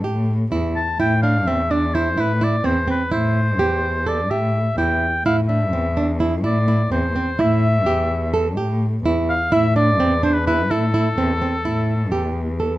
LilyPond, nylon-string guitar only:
\new Staff \with { instrumentName = "Nylon-string guitar" } { \time 9/8 \key a \minor \tempo 4. = 84 g'4 e'4 e'8 d'8 c'8 d'8 e'8 | e'8 e'8 c'8 c'8 e'4 g'4 a'8 | g'4 e'4 e'8 d'8 c'8 d'8 e'8 | e'8 e'8 c'8 c'8 e'4 g'4 a'8 |
g'4 e'4 e'8 d'8 c'8 d'8 e'8 | e'8 e'8 c'8 c'8 e'4 g'4 a'8 | }